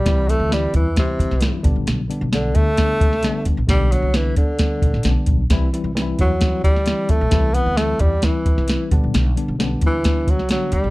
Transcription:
<<
  \new Staff \with { instrumentName = "Tine electric piano" } { \time 4/4 \key g \major \tempo 4 = 132 <e g c' e'>8 <e g c' e'>8 <e g c' e'>4 <e g c' e'>4 <e g c' e'>8 <d g b d'>8~ | <d g b d'>8 <d g b d'>8 <d g b d'>4 <d g b d'>4 <d g a b d'>4 | <d g b d'>8 <d g b d'>8 <d g b d'>4 <d g b c' d'>4 <d g b cis' d'>4 | <e g c' e'>8 <e g c' e'>8 <e g c' ees' e'>4 <e g c' ees' e'>4 <e g c' e'>4 |
<e g c' e'>8 <e g c' e'>8 <e g c' e'>4 <e g c' e'>4 <e g c' e'>8 <d g b d'>8~ | <d g b d'>8 <d g b d'>8 <d g b cis' d'>4 <d g b d'>4 <d g b d'>4 | }
  \new Staff \with { instrumentName = "Tenor saxophone" } { \clef bass \time 4/4 \key g \major g8 a8 g8 e8 c4. r8 | r4 d8 a2 r8 | g8 fis8 e8 d2 r8 | r4. fis4 g4 a8~ |
a8 b8 a8 g8 e4. r8 | r4. e4 fis8 fis8 g8 | }
  \new Staff \with { instrumentName = "Upright bass" } { \clef bass \time 4/4 \key g \major c,8. d,8. e,8. r16 d,16 c,8 r16 b,,16 bes,,16 | b,,8 r16 b,,8. d,4 c,8. r16 d,16 bes,,16 | b,,8. c,8. d,8. r16 b,,16 a,,16 b,,16 r16 b,,8 | c,8 r16 c,8. e,4 d,8. r16 e,16 b,,16 |
c,8. d,8. e,8. r16 d,16 c,8 r16 b,,16 bes,,16 | b,,8 r16 b,,8. d,4 c,8. r16 d,16 bes,,16 | }
  \new DrumStaff \with { instrumentName = "Drums" } \drummode { \time 4/4 <hh bd sn>8 hh8 <hh sn>8 <hh bd>8 <hh bd sn>8 <hh bd>16 sn16 <hh sn>8 <hh bd>8 | <hh sn>8 hh8 <hh sn>8 <hh bd>8 <hh bd sn>8 <hh bd>16 sn16 <hh sn>8 <hh bd>8 | <hh bd sn>8 hh8 <hh sn>8 <hh bd>8 <hh bd sn>8 <hh bd>16 sn16 <hh sn>8 <hh bd>8 | <hh bd sn>8 hh8 <hh sn>8 <hh bd>8 <hh bd sn>8 <hh bd>16 sn16 <hh sn>8 <hh bd>8 |
<hh bd sn>8 hh8 <hh sn>8 <hh bd>8 <hh bd sn>8 <hh bd>16 sn16 <hh sn>8 <hh bd>8 | <hh sn>8 hh8 <hh sn>8 <hh bd>8 <hh bd sn>8 <hh bd>16 sn16 <hh sn>8 <hh bd>8 | }
>>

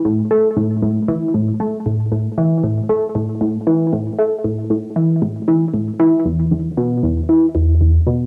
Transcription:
\new Staff \with { instrumentName = "Synth arpeggio sound" } { \clef bass \time 4/4 \key a \mixolydian \tempo 4 = 116 a,8 a8 a,8 a,8 e8 a,8 a8 a,8 | a,8 e8 a,8 a8 a,8 a,8 e8 a,8 | a8 a,8 a,8 e8 a,8 e8 a,8 e8 | e,8 e,8 b,8 e,8 e8 e,8 e,8 b,8 | }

